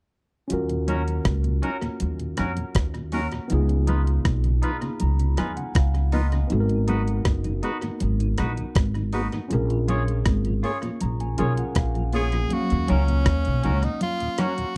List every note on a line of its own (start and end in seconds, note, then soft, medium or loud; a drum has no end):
0.48 3.45 C#4 medium
0.48 3.46 F4 medium
0.48 closed hi-hat medium
0.48 low conga medium
0.52 1.18 D#2 medium
0.52 3.47 F#4 medium
0.52 3.48 A#4 medium
0.69 0.78 D#2 medium
0.69 0.78 A#2 medium
0.69 closed hi-hat soft
0.88 0.96 F#3 medium
0.88 1.01 C#4 medium
0.88 0.96 C#4 medium
0.88 0.97 D#4 medium
0.88 1.01 F#4 medium
0.88 1.02 A#4 medium
0.88 closed hi-hat medium
0.88 high conga soft
0.88 low conga medium
1.08 closed hi-hat soft
1.25 1.59 C#2 medium
1.25 kick medium
1.25 cross-stick medium
1.25 closed hi-hat medium
1.25 high conga soft
1.44 1.53 D#2 medium
1.44 1.53 A#2 medium
1.44 closed hi-hat medium
1.62 1.71 F#3 medium
1.62 1.76 C#4 medium
1.62 1.71 C#4 medium
1.62 1.71 D#4 medium
1.62 1.76 F#4 medium
1.62 1.77 A#4 medium
1.62 closed hi-hat medium
1.82 1.90 D#2 medium
1.82 1.90 A#2 medium
1.82 closed hi-hat medium
1.82 high conga medium
2.00 2.35 D#2 medium
2.00 closed hi-hat medium
2.00 low conga medium
2.20 2.28 D#2 medium
2.20 2.28 A#2 medium
2.20 closed hi-hat soft
2.37 2.56 F2 medium
2.37 2.46 F#3 medium
2.37 2.51 C#4 medium
2.37 2.46 C#4 medium
2.37 2.47 D#4 medium
2.37 2.51 F#4 medium
2.37 2.52 A#4 medium
2.37 cross-stick medium
2.37 closed hi-hat medium
2.37 low conga medium
2.57 2.65 D#2 soft
2.57 2.65 A#2 medium
2.57 closed hi-hat medium
2.75 3.26 D#2 medium
2.75 kick loud
2.75 cross-stick medium
2.75 closed hi-hat medium
2.95 3.03 D#2 medium
2.95 3.03 A#2 medium
2.95 closed hi-hat soft
3.12 3.21 F#3 medium
3.12 3.26 C#4 medium
3.12 3.22 C#4 medium
3.12 3.22 D#4 medium
3.12 3.26 F#4 medium
3.12 3.27 A#4 medium
3.12 open hi-hat medium
3.12 high conga medium
3.32 3.40 D#2 soft
3.32 3.40 A#2 medium
3.32 closed hi-hat soft
3.32 high conga soft
3.48 4.18 C#2 loud
3.48 6.45 B3 medium
3.48 6.46 D#4 medium
3.48 closed hi-hat medium
3.48 low conga medium
3.52 6.47 F4 medium
3.52 6.48 G#4 medium
3.69 3.78 C#3 medium
3.69 closed hi-hat soft
3.87 3.96 F3 medium
3.87 3.97 B3 medium
3.87 4.01 D#4 medium
3.87 3.97 D#4 medium
3.87 4.01 F4 medium
3.87 4.02 B4 medium
3.87 closed hi-hat medium
3.87 high conga soft
3.87 low conga medium
4.07 closed hi-hat soft
4.25 4.59 B1 medium
4.25 kick medium
4.25 cross-stick medium
4.25 closed hi-hat medium
4.25 high conga soft
4.44 4.53 C#3 medium
4.44 closed hi-hat soft
4.62 4.72 F3 medium
4.62 4.72 B3 medium
4.62 4.76 D#4 medium
4.62 4.72 D#4 medium
4.62 4.76 F4 medium
4.62 4.77 B4 medium
4.62 4.81 B5 medium
4.62 closed hi-hat medium
4.82 4.90 C#3 medium
4.82 4.99 A#5 medium
4.82 closed hi-hat medium
4.82 high conga medium
5.00 5.35 C#2 medium
5.00 5.36 A#5 medium
5.00 closed hi-hat medium
5.00 low conga medium
5.19 5.28 C#3 medium
5.19 closed hi-hat medium
5.37 5.56 D#2 medium
5.37 5.47 F3 medium
5.37 5.47 B3 medium
5.37 5.51 D#4 medium
5.37 5.47 D#4 medium
5.37 5.51 F4 medium
5.37 5.52 B4 medium
5.37 5.56 G#5 medium
5.37 cross-stick medium
5.37 closed hi-hat medium
5.37 low conga medium
5.57 5.66 C#3 soft
5.57 5.74 F#5 medium
5.57 closed hi-hat medium
5.75 6.43 C#2 medium
5.75 6.11 F5 medium
5.75 kick loud
5.75 cross-stick loud
5.75 closed hi-hat medium
5.95 6.03 C#3 medium
5.95 closed hi-hat soft
6.12 6.21 F3 medium
6.12 6.22 B3 medium
6.12 6.26 D#4 medium
6.12 6.22 D#4 medium
6.12 6.26 F4 medium
6.12 6.27 B4 medium
6.12 6.48 D#5 medium
6.12 open hi-hat medium
6.12 high conga medium
6.32 6.41 C#3 medium
6.32 closed hi-hat soft
6.32 high conga soft
6.48 9.45 B3 medium
6.48 9.46 D#4 medium
6.48 closed hi-hat medium
6.48 low conga medium
6.52 7.18 G#1 loud
6.52 9.47 F#4 medium
6.52 6.59 A4 medium
6.60 9.52 A#4 medium
6.69 6.78 G#2 medium
6.69 6.78 D#3 medium
6.69 closed hi-hat soft
6.88 6.97 G#3 medium
6.88 6.97 B3 medium
6.88 7.01 D#4 medium
6.88 7.02 F#4 medium
6.88 6.97 F#4 medium
6.88 7.02 B4 medium
6.88 closed hi-hat medium
6.88 high conga soft
6.88 low conga medium
7.08 closed hi-hat soft
7.25 7.59 F#1 medium
7.25 kick loud
7.25 cross-stick medium
7.25 closed hi-hat medium
7.25 high conga soft
7.44 7.53 G#2 medium
7.44 7.53 D#3 medium
7.44 closed hi-hat soft
7.63 7.72 G#3 medium
7.63 7.72 B3 medium
7.63 7.76 D#4 medium
7.63 7.72 F#4 medium
7.63 7.77 F#4 medium
7.63 7.77 B4 medium
7.63 closed hi-hat medium
7.82 7.91 G#2 medium
7.82 7.91 D#3 medium
7.82 closed hi-hat medium
7.82 high conga medium
8.00 8.35 G#1 medium
8.00 closed hi-hat medium
8.00 low conga medium
8.20 8.28 G#2 medium
8.20 8.28 D#3 medium
8.20 closed hi-hat medium
8.38 8.56 A#1 medium
8.38 8.47 G#3 medium
8.38 8.47 B3 medium
8.38 8.51 D#4 medium
8.38 8.52 F#4 medium
8.38 8.47 F#4 medium
8.38 8.52 B4 medium
8.38 cross-stick medium
8.38 closed hi-hat medium
8.38 low conga medium
8.57 8.66 G#2 medium
8.57 8.66 D#3 medium
8.57 closed hi-hat medium
8.75 9.27 G#1 medium
8.75 kick loud
8.75 cross-stick loud
8.75 closed hi-hat medium
8.95 9.03 G#2 medium
8.95 9.03 D#3 medium
8.95 closed hi-hat soft
9.13 9.22 G#3 medium
9.13 9.22 B3 medium
9.13 9.26 D#4 medium
9.13 9.27 F#4 medium
9.13 9.22 F#4 medium
9.13 9.27 B4 medium
9.13 open hi-hat medium
9.13 high conga medium
9.32 9.41 G#2 medium
9.32 9.41 D#3 soft
9.32 closed hi-hat soft
9.32 high conga soft
9.48 11.33 C#4 medium
9.48 11.34 F4 medium
9.48 11.35 G#4 medium
9.48 closed hi-hat medium
9.48 low conga medium
9.52 10.27 A#1 loud
9.52 11.36 A#4 medium
9.70 9.78 A#2 medium
9.70 9.78 F3 medium
9.70 closed hi-hat soft
9.88 9.97 A#3 medium
9.88 9.97 C#4 medium
9.88 10.02 F4 medium
9.88 10.02 G#4 medium
9.88 9.97 G#4 medium
9.88 10.02 C#5 loud
9.88 closed hi-hat medium
9.88 high conga soft
9.88 low conga medium
10.08 closed hi-hat soft
10.26 10.60 G#1 medium
10.26 kick medium
10.26 cross-stick medium
10.26 closed hi-hat medium
10.26 high conga soft
10.45 10.54 A#2 medium
10.45 10.54 F3 medium
10.45 closed hi-hat soft
10.63 10.72 A#3 medium
10.63 10.72 C#4 medium
10.63 10.77 F4 medium
10.63 10.77 G#4 medium
10.63 10.72 G#4 medium
10.63 10.78 C#5 medium
10.63 10.98 C#6 medium
10.63 open hi-hat medium
10.83 10.91 A#2 medium
10.83 10.91 F3 medium
10.83 closed hi-hat medium
10.83 high conga medium
11.01 11.36 A#1 medium
11.01 11.19 A#5 medium
11.01 closed hi-hat medium
11.01 low conga medium
11.20 11.29 A#2 medium
11.20 11.28 F3 medium
11.20 11.37 G#5 medium
11.20 closed hi-hat soft
11.38 11.56 B1 medium
11.38 11.47 A#3 medium
11.38 12.51 C#4 medium
11.38 11.47 C#4 medium
11.38 12.51 F4 medium
11.38 11.52 F4 medium
11.38 11.47 G#4 medium
11.38 11.52 G#4 medium
11.38 12.51 G#4 soft
11.38 12.52 A#4 medium
11.38 11.53 C#5 medium
11.38 11.56 G#5 medium
11.38 closed hi-hat medium
11.38 low conga medium
11.57 11.66 A#2 medium
11.57 11.66 F3 medium
11.57 11.75 F#5 medium
11.57 closed hi-hat medium
11.75 12.43 A#1 medium
11.75 12.47 F5 medium
11.75 kick loud
11.75 cross-stick loud
11.75 closed hi-hat medium
11.95 12.04 A#2 medium
11.95 12.04 F3 medium
11.95 closed hi-hat soft
12.13 12.22 A#3 medium
12.13 12.22 C#4 medium
12.13 12.27 F4 medium
12.13 12.27 G#4 medium
12.13 12.23 G#4 medium
12.13 12.54 G#4 medium
12.13 12.28 C#5 medium
12.13 open hi-hat medium
12.13 high conga medium
12.32 12.41 A#2 medium
12.32 12.41 F3 soft
12.32 closed hi-hat soft
12.32 high conga medium
12.49 14.77 F#3 medium
12.49 14.77 A#3 medium
12.49 14.77 C#4 medium
12.49 closed hi-hat medium
12.49 low conga medium
12.53 12.92 F#4 loud
12.53 14.77 F5 medium
12.70 12.79 D#2 medium
12.70 12.87 D#2 medium
12.70 12.79 A#2 medium
12.70 closed hi-hat soft
12.88 13.23 C#2 medium
12.88 12.97 F#3 medium
12.88 13.02 C#4 medium
12.88 12.98 C#4 medium
12.88 13.86 C#4 loud
12.88 12.98 D#4 medium
12.88 13.02 F#4 medium
12.88 13.03 A#4 loud
12.88 closed hi-hat medium
12.88 high conga medium
12.88 low conga medium
13.08 13.16 D#2 medium
13.08 13.16 A#2 medium
13.08 closed hi-hat soft
13.26 13.44 D#2 loud
13.26 kick loud
13.26 cross-stick loud
13.26 closed hi-hat medium
13.45 13.63 B1 medium
13.45 13.54 D#2 medium
13.45 13.54 A#2 medium
13.45 closed hi-hat medium
13.63 13.82 C#2 loud
13.63 13.72 F#3 medium
13.63 13.77 C#4 medium
13.63 13.73 C#4 medium
13.63 13.73 D#4 medium
13.63 13.77 F#4 loud
13.63 13.78 A#4 medium
13.63 closed hi-hat medium
13.83 13.91 D#2 medium
13.83 13.91 A#2 medium
13.83 14.02 D#4 medium
13.83 closed hi-hat medium
14.01 14.42 F4 loud
14.01 closed hi-hat medium
14.01 low conga medium
14.20 14.29 D#2 medium
14.20 14.29 A#2 medium
14.20 closed hi-hat medium
14.38 14.47 F#3 medium
14.38 14.52 C#4 medium
14.38 14.47 C#4 medium
14.38 14.48 D#4 medium
14.38 14.52 F#4 medium
14.38 14.77 F#4 loud
14.38 14.53 A#4 medium
14.38 cross-stick medium
14.38 closed hi-hat medium
14.38 low conga medium
14.58 14.66 D#2 medium
14.58 14.66 A#2 soft
14.58 closed hi-hat medium